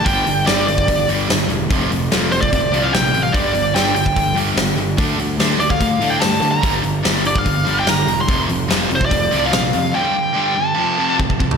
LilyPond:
<<
  \new Staff \with { instrumentName = "Lead electric guitar" } { \time 4/4 \key f \mixolydian \tempo 4 = 146 g''4 d''8 d''4 r4. | r4. c''16 d''4 f''16 g''8. f''16 | d''4 g''8 g''4 r4. | r4. d''16 f''4 g''16 a''8. bes''16~ |
bes''16 r4 r16 d''16 f''4 g''16 bes''8. c'''16~ | c'''16 r4 r16 c''16 d''4 f''4~ f''16 | g''4. a''4. r4 | }
  \new Staff \with { instrumentName = "Distorted electric guitar" } { \clef bass \time 4/4 \key f \mixolydian <g, d g>8 <g, d>8 <g, d g>8 <g, d>8 <g, d>8 <g, d g>8 <g, d>8 <g, d>8 | <f, c f>8 <f, c>8 <f, c f>8 <f, c>8 <f, c>8 <f, c f>8 <f, c>8 <f, c>8 | <g, d g>8 <g, d>8 <g, d g>8 <g, d>8 <g, d>8 <g, d g>8 <g, d>8 <g, d>8 | <d a d'>8 <d a>8 <d a d'>8 <d a>8 <d a>8 <d a d'>8 <d a>8 <d a>8 |
<g, d g>8 <g, d>8 <g, d g>8 <g, d>8 <g, d>8 <g, d g>8 <g, d>8 <g, d>8 | <f, c f>8 <f, c>8 <f, c f>8 <f, c>8 <f, c>8 <f, c f>8 <f, c>8 <f, c>8 | <g, d g>8 <g, d>8 <g, d g>8 <g, d>8 <f, c f>8 <f, c f>8 <f, c>8 <f, c>8 | }
  \new Staff \with { instrumentName = "Distorted electric guitar" } { \clef bass \time 4/4 \key f \mixolydian <g, d g>8 <g, d>8 <g, d g>8 <g, d>8 <g, d>8 <g, d g>8 <g, d>8 <g, d>8 | <f, c f>8 <f, c>8 <f, c f>8 <f, c>8 <f, c>8 <f, c f>8 <f, c>8 <f, c>8 | <g, d g>8 <g, d>8 <g, d g>8 <g, d>8 <g, d>8 <g, d g>8 <g, d>8 <g, d>8 | <d a d'>8 <d a>8 <d a d'>8 <d a>8 <d a>8 <d a d'>8 <d a>8 <d a>8 |
<g, d g>8 <g, d>8 <g, d g>8 <g, d>8 <g, d>8 <g, d g>8 <g, d>8 <g, d>8 | <f, c f>8 <f, c>8 <f, c f>8 <f, c>8 <f, c>8 <f, c f>8 <f, c>8 <f, c>8 | <g, d g>8 <g, d>8 <g, d g>8 <g, d>8 <f, c f>8 <f, c f>8 <f, c>8 <f, c>8 | }
  \new Staff \with { instrumentName = "Picked electric bass" } { \clef bass \time 4/4 \key f \mixolydian g,,8 g,,8 g,,4 g,,8 g,,8 g,,8 e,,8 | f,,8 f,,8 f,,8 f,,8 f,,8 c,8 bes,,8 a,,8 | g,,8 g,,8 g,,4 g,,8 g,,8 g,,8 g,,8 | d,8 d,8 d,8 d,8 d,8 a,8 g,8 d8 |
g,,8 g,,8 g,,4 g,,8 g,,8 g,,8 e,,8 | f,,8 f,,8 f,,8 f,,8 f,,8 c,8 bes,,8 f,8 | r1 | }
  \new DrumStaff \with { instrumentName = "Drums" } \drummode { \time 4/4 <hho bd>8 hho8 <hho sn>8 hho16 bd16 <hho bd>8 hho8 <hho sn>8 hho8 | <hho bd>8 hho8 <hho sn>8 hho16 bd16 <hho bd>8 hho8 <hho sn>8 hho8 | <hho bd>8 hho8 <hho sn>8 hho16 bd16 <hho bd>8 hho8 <hho sn>8 hho8 | <hho bd>8 hho8 <hho sn>8 hho16 bd16 <hho bd>8 hho8 <hho sn>8 hho8 |
<hho bd>8 hho8 <hho sn>8 hho16 bd16 <hho bd>8 hho8 <hho sn>8 hho8 | <hho bd>8 hho8 <hho sn>8 hho16 bd16 <hho bd>8 hho8 <hho sn>8 hho8 | r4 r4 r4 bd16 bd16 bd16 tomfh16 | }
>>